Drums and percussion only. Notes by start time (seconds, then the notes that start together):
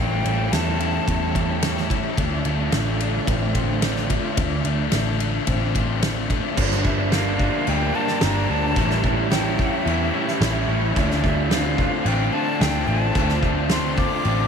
0.25 ride
0.53 snare, ride
0.80 ride
1.08 kick, ride
1.35 kick, ride
1.62 snare, ride
1.77 snare
1.90 kick, ride
2.17 kick, ride
2.45 ride
2.72 snare, ride
3.00 ride
3.27 kick, ride
3.55 kick, ride
3.82 snare, ride
3.96 snare
4.10 kick, ride
4.37 kick, ride
4.65 ride
4.92 snare, ride
5.20 ride
5.47 kick, ride
5.75 kick, ride
6.02 snare, ride
6.30 kick, ride
6.57 kick, crash
6.71 snare
6.85 kick
7.12 snare, crash
7.39 kick
7.67 crash
8.08 snare
8.21 snare, crash
8.76 kick, crash
8.90 snare
9.04 kick
9.31 snare, crash
9.59 kick
9.87 crash
10.28 snare
10.41 snare, crash
10.96 kick, crash
11.11 snare
11.24 kick
11.51 snare, crash
11.78 kick
12.06 crash
12.61 snare, crash
13.15 kick, crash
13.29 snare
13.43 kick
13.69 snare, crash
13.98 kick
14.25 crash